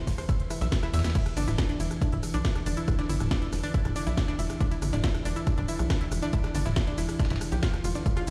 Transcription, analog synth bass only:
0, 0, Header, 1, 2, 480
1, 0, Start_track
1, 0, Key_signature, 1, "minor"
1, 0, Tempo, 431655
1, 1281, Time_signature, 4, 2, 24, 8
1, 9232, End_track
2, 0, Start_track
2, 0, Title_t, "Analog synth bass"
2, 0, Program_c, 0, 38
2, 80, Note_on_c, 0, 28, 82
2, 179, Note_off_c, 0, 28, 0
2, 682, Note_on_c, 0, 35, 88
2, 779, Note_off_c, 0, 35, 0
2, 1042, Note_on_c, 0, 40, 95
2, 1140, Note_off_c, 0, 40, 0
2, 1281, Note_on_c, 0, 28, 97
2, 1380, Note_off_c, 0, 28, 0
2, 1522, Note_on_c, 0, 31, 102
2, 1620, Note_off_c, 0, 31, 0
2, 1641, Note_on_c, 0, 26, 89
2, 1739, Note_off_c, 0, 26, 0
2, 2001, Note_on_c, 0, 28, 86
2, 2100, Note_off_c, 0, 28, 0
2, 2362, Note_on_c, 0, 26, 111
2, 2460, Note_off_c, 0, 26, 0
2, 2602, Note_on_c, 0, 35, 86
2, 2700, Note_off_c, 0, 35, 0
2, 2962, Note_on_c, 0, 28, 94
2, 3060, Note_off_c, 0, 28, 0
2, 3201, Note_on_c, 0, 28, 100
2, 3300, Note_off_c, 0, 28, 0
2, 3440, Note_on_c, 0, 31, 98
2, 3539, Note_off_c, 0, 31, 0
2, 3563, Note_on_c, 0, 26, 87
2, 3660, Note_off_c, 0, 26, 0
2, 3923, Note_on_c, 0, 28, 84
2, 4021, Note_off_c, 0, 28, 0
2, 4283, Note_on_c, 0, 26, 111
2, 4380, Note_off_c, 0, 26, 0
2, 4522, Note_on_c, 0, 35, 85
2, 4620, Note_off_c, 0, 35, 0
2, 4882, Note_on_c, 0, 28, 94
2, 4981, Note_off_c, 0, 28, 0
2, 5121, Note_on_c, 0, 28, 94
2, 5220, Note_off_c, 0, 28, 0
2, 5362, Note_on_c, 0, 31, 99
2, 5460, Note_off_c, 0, 31, 0
2, 5482, Note_on_c, 0, 26, 91
2, 5580, Note_off_c, 0, 26, 0
2, 5842, Note_on_c, 0, 28, 84
2, 5940, Note_off_c, 0, 28, 0
2, 6203, Note_on_c, 0, 26, 108
2, 6300, Note_off_c, 0, 26, 0
2, 6442, Note_on_c, 0, 35, 86
2, 6540, Note_off_c, 0, 35, 0
2, 6801, Note_on_c, 0, 28, 92
2, 6900, Note_off_c, 0, 28, 0
2, 7041, Note_on_c, 0, 28, 98
2, 7140, Note_off_c, 0, 28, 0
2, 7280, Note_on_c, 0, 31, 100
2, 7379, Note_off_c, 0, 31, 0
2, 7402, Note_on_c, 0, 26, 90
2, 7499, Note_off_c, 0, 26, 0
2, 7761, Note_on_c, 0, 28, 83
2, 7860, Note_off_c, 0, 28, 0
2, 8121, Note_on_c, 0, 26, 108
2, 8219, Note_off_c, 0, 26, 0
2, 8361, Note_on_c, 0, 35, 89
2, 8459, Note_off_c, 0, 35, 0
2, 8721, Note_on_c, 0, 28, 98
2, 8820, Note_off_c, 0, 28, 0
2, 8961, Note_on_c, 0, 28, 99
2, 9060, Note_off_c, 0, 28, 0
2, 9232, End_track
0, 0, End_of_file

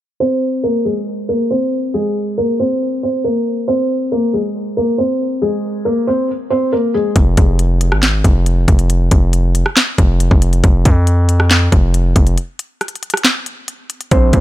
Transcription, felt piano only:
0, 0, Header, 1, 2, 480
1, 0, Start_track
1, 0, Tempo, 434783
1, 222, Time_signature, 4, 2, 24, 8
1, 15902, End_track
2, 0, Start_track
2, 0, Title_t, "Felt piano"
2, 0, Program_c, 0, 0
2, 223, Note_on_c, 0, 72, 101
2, 232, Note_on_c, 0, 60, 76
2, 674, Note_off_c, 0, 72, 0
2, 679, Note_off_c, 0, 60, 0
2, 700, Note_on_c, 0, 70, 85
2, 709, Note_on_c, 0, 58, 66
2, 924, Note_off_c, 0, 70, 0
2, 928, Note_off_c, 0, 58, 0
2, 939, Note_on_c, 0, 68, 78
2, 948, Note_on_c, 0, 56, 59
2, 1392, Note_off_c, 0, 68, 0
2, 1396, Note_off_c, 0, 56, 0
2, 1422, Note_on_c, 0, 70, 81
2, 1430, Note_on_c, 0, 58, 57
2, 1644, Note_off_c, 0, 70, 0
2, 1649, Note_off_c, 0, 58, 0
2, 1661, Note_on_c, 0, 72, 78
2, 1671, Note_on_c, 0, 60, 62
2, 2113, Note_off_c, 0, 72, 0
2, 2118, Note_off_c, 0, 60, 0
2, 2142, Note_on_c, 0, 68, 104
2, 2152, Note_on_c, 0, 56, 79
2, 2594, Note_off_c, 0, 68, 0
2, 2599, Note_off_c, 0, 56, 0
2, 2623, Note_on_c, 0, 70, 82
2, 2631, Note_on_c, 0, 58, 55
2, 2845, Note_off_c, 0, 70, 0
2, 2850, Note_off_c, 0, 58, 0
2, 2866, Note_on_c, 0, 72, 82
2, 2875, Note_on_c, 0, 60, 63
2, 3316, Note_off_c, 0, 72, 0
2, 3320, Note_off_c, 0, 60, 0
2, 3347, Note_on_c, 0, 72, 65
2, 3355, Note_on_c, 0, 60, 55
2, 3567, Note_off_c, 0, 72, 0
2, 3572, Note_off_c, 0, 60, 0
2, 3580, Note_on_c, 0, 70, 80
2, 3589, Note_on_c, 0, 58, 58
2, 4033, Note_off_c, 0, 70, 0
2, 4037, Note_off_c, 0, 58, 0
2, 4060, Note_on_c, 0, 72, 92
2, 4069, Note_on_c, 0, 60, 73
2, 4512, Note_off_c, 0, 72, 0
2, 4517, Note_off_c, 0, 60, 0
2, 4546, Note_on_c, 0, 70, 85
2, 4555, Note_on_c, 0, 58, 73
2, 4767, Note_off_c, 0, 70, 0
2, 4772, Note_off_c, 0, 58, 0
2, 4785, Note_on_c, 0, 68, 78
2, 4793, Note_on_c, 0, 56, 59
2, 5235, Note_off_c, 0, 68, 0
2, 5239, Note_off_c, 0, 56, 0
2, 5266, Note_on_c, 0, 70, 83
2, 5275, Note_on_c, 0, 58, 62
2, 5486, Note_off_c, 0, 70, 0
2, 5491, Note_off_c, 0, 58, 0
2, 5500, Note_on_c, 0, 72, 77
2, 5509, Note_on_c, 0, 60, 61
2, 5953, Note_off_c, 0, 72, 0
2, 5957, Note_off_c, 0, 60, 0
2, 5981, Note_on_c, 0, 68, 100
2, 5990, Note_on_c, 0, 56, 81
2, 6433, Note_off_c, 0, 68, 0
2, 6438, Note_off_c, 0, 56, 0
2, 6460, Note_on_c, 0, 70, 79
2, 6468, Note_on_c, 0, 58, 64
2, 6683, Note_off_c, 0, 70, 0
2, 6688, Note_off_c, 0, 58, 0
2, 6704, Note_on_c, 0, 72, 73
2, 6713, Note_on_c, 0, 60, 56
2, 6926, Note_off_c, 0, 72, 0
2, 6931, Note_off_c, 0, 60, 0
2, 7181, Note_on_c, 0, 72, 80
2, 7189, Note_on_c, 0, 60, 62
2, 7404, Note_off_c, 0, 72, 0
2, 7408, Note_off_c, 0, 60, 0
2, 7425, Note_on_c, 0, 70, 83
2, 7433, Note_on_c, 0, 58, 64
2, 7646, Note_off_c, 0, 70, 0
2, 7650, Note_off_c, 0, 58, 0
2, 7665, Note_on_c, 0, 68, 80
2, 7673, Note_on_c, 0, 56, 61
2, 7886, Note_off_c, 0, 68, 0
2, 7891, Note_off_c, 0, 56, 0
2, 15585, Note_on_c, 0, 72, 97
2, 15594, Note_on_c, 0, 60, 78
2, 15902, Note_off_c, 0, 60, 0
2, 15902, Note_off_c, 0, 72, 0
2, 15902, End_track
0, 0, End_of_file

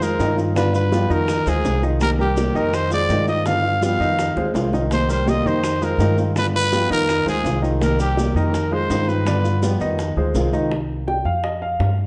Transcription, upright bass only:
0, 0, Header, 1, 2, 480
1, 0, Start_track
1, 0, Tempo, 362976
1, 735, Time_signature, 4, 2, 24, 8
1, 15956, End_track
2, 0, Start_track
2, 0, Title_t, "Upright bass"
2, 0, Program_c, 0, 32
2, 0, Note_on_c, 0, 41, 99
2, 208, Note_off_c, 0, 41, 0
2, 256, Note_on_c, 0, 43, 101
2, 1378, Note_off_c, 0, 43, 0
2, 1451, Note_on_c, 0, 41, 85
2, 1899, Note_off_c, 0, 41, 0
2, 1936, Note_on_c, 0, 38, 77
2, 2159, Note_off_c, 0, 38, 0
2, 2169, Note_on_c, 0, 36, 94
2, 3295, Note_off_c, 0, 36, 0
2, 3370, Note_on_c, 0, 41, 93
2, 4042, Note_off_c, 0, 41, 0
2, 4089, Note_on_c, 0, 43, 103
2, 5214, Note_off_c, 0, 43, 0
2, 5286, Note_on_c, 0, 41, 96
2, 5736, Note_off_c, 0, 41, 0
2, 5766, Note_on_c, 0, 38, 73
2, 5992, Note_off_c, 0, 38, 0
2, 6003, Note_on_c, 0, 36, 98
2, 7131, Note_off_c, 0, 36, 0
2, 7200, Note_on_c, 0, 41, 92
2, 7875, Note_off_c, 0, 41, 0
2, 7912, Note_on_c, 0, 43, 104
2, 9045, Note_off_c, 0, 43, 0
2, 9124, Note_on_c, 0, 41, 89
2, 9574, Note_off_c, 0, 41, 0
2, 9591, Note_on_c, 0, 38, 71
2, 9823, Note_off_c, 0, 38, 0
2, 9833, Note_on_c, 0, 36, 102
2, 10964, Note_off_c, 0, 36, 0
2, 11038, Note_on_c, 0, 41, 103
2, 11713, Note_off_c, 0, 41, 0
2, 11768, Note_on_c, 0, 43, 108
2, 12892, Note_off_c, 0, 43, 0
2, 12964, Note_on_c, 0, 41, 90
2, 13413, Note_off_c, 0, 41, 0
2, 13441, Note_on_c, 0, 38, 71
2, 13668, Note_off_c, 0, 38, 0
2, 13681, Note_on_c, 0, 36, 99
2, 14809, Note_off_c, 0, 36, 0
2, 14872, Note_on_c, 0, 41, 84
2, 15551, Note_off_c, 0, 41, 0
2, 15599, Note_on_c, 0, 43, 93
2, 15956, Note_off_c, 0, 43, 0
2, 15956, End_track
0, 0, End_of_file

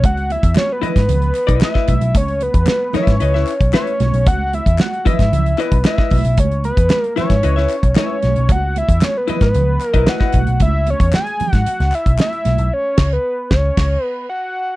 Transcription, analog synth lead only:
0, 0, Header, 1, 2, 480
1, 0, Start_track
1, 0, Key_signature, 4, "minor"
1, 0, Tempo, 528169
1, 33, Time_signature, 4, 2, 24, 8
1, 13416, End_track
2, 0, Start_track
2, 0, Title_t, "Analog synth lead"
2, 0, Program_c, 0, 81
2, 46, Note_on_c, 0, 78, 106
2, 289, Note_on_c, 0, 76, 102
2, 303, Note_off_c, 0, 78, 0
2, 516, Note_off_c, 0, 76, 0
2, 522, Note_on_c, 0, 73, 98
2, 657, Note_on_c, 0, 71, 86
2, 671, Note_off_c, 0, 73, 0
2, 885, Note_off_c, 0, 71, 0
2, 891, Note_on_c, 0, 71, 100
2, 1446, Note_off_c, 0, 71, 0
2, 1496, Note_on_c, 0, 76, 94
2, 1973, Note_on_c, 0, 73, 94
2, 1987, Note_off_c, 0, 76, 0
2, 2204, Note_on_c, 0, 71, 102
2, 2218, Note_off_c, 0, 73, 0
2, 2692, Note_on_c, 0, 73, 105
2, 2706, Note_off_c, 0, 71, 0
2, 3394, Note_off_c, 0, 73, 0
2, 3400, Note_on_c, 0, 73, 100
2, 3884, Note_on_c, 0, 78, 118
2, 3898, Note_off_c, 0, 73, 0
2, 4128, Note_on_c, 0, 76, 105
2, 4142, Note_off_c, 0, 78, 0
2, 4372, Note_on_c, 0, 78, 98
2, 4386, Note_off_c, 0, 76, 0
2, 4604, Note_on_c, 0, 76, 113
2, 4618, Note_off_c, 0, 78, 0
2, 5091, Note_on_c, 0, 71, 93
2, 5105, Note_off_c, 0, 76, 0
2, 5323, Note_off_c, 0, 71, 0
2, 5329, Note_on_c, 0, 76, 99
2, 5811, Note_on_c, 0, 73, 91
2, 5825, Note_off_c, 0, 76, 0
2, 6037, Note_off_c, 0, 73, 0
2, 6043, Note_on_c, 0, 71, 102
2, 6370, Note_off_c, 0, 71, 0
2, 6370, Note_on_c, 0, 70, 102
2, 6485, Note_off_c, 0, 70, 0
2, 6517, Note_on_c, 0, 73, 104
2, 7200, Note_off_c, 0, 73, 0
2, 7251, Note_on_c, 0, 73, 105
2, 7740, Note_on_c, 0, 78, 111
2, 7754, Note_off_c, 0, 73, 0
2, 7977, Note_on_c, 0, 76, 109
2, 7991, Note_off_c, 0, 78, 0
2, 8218, Note_on_c, 0, 73, 109
2, 8231, Note_off_c, 0, 76, 0
2, 8336, Note_on_c, 0, 71, 97
2, 8350, Note_off_c, 0, 73, 0
2, 8557, Note_off_c, 0, 71, 0
2, 8562, Note_on_c, 0, 71, 98
2, 8962, Note_off_c, 0, 71, 0
2, 8962, Note_on_c, 0, 70, 98
2, 9169, Note_on_c, 0, 78, 105
2, 9183, Note_off_c, 0, 70, 0
2, 9643, Note_off_c, 0, 78, 0
2, 9654, Note_on_c, 0, 76, 108
2, 9908, Note_on_c, 0, 73, 109
2, 9921, Note_off_c, 0, 76, 0
2, 10130, Note_off_c, 0, 73, 0
2, 10135, Note_on_c, 0, 80, 109
2, 10481, Note_off_c, 0, 80, 0
2, 10481, Note_on_c, 0, 78, 109
2, 10609, Note_off_c, 0, 78, 0
2, 10609, Note_on_c, 0, 78, 115
2, 10858, Note_on_c, 0, 76, 106
2, 10871, Note_off_c, 0, 78, 0
2, 11087, Note_off_c, 0, 76, 0
2, 11097, Note_on_c, 0, 76, 106
2, 11573, Note_on_c, 0, 73, 107
2, 11587, Note_off_c, 0, 76, 0
2, 11932, Note_on_c, 0, 71, 102
2, 11945, Note_off_c, 0, 73, 0
2, 12269, Note_off_c, 0, 71, 0
2, 12274, Note_on_c, 0, 73, 97
2, 12756, Note_off_c, 0, 73, 0
2, 12756, Note_on_c, 0, 71, 97
2, 12960, Note_off_c, 0, 71, 0
2, 12991, Note_on_c, 0, 78, 101
2, 13416, Note_off_c, 0, 78, 0
2, 13416, End_track
0, 0, End_of_file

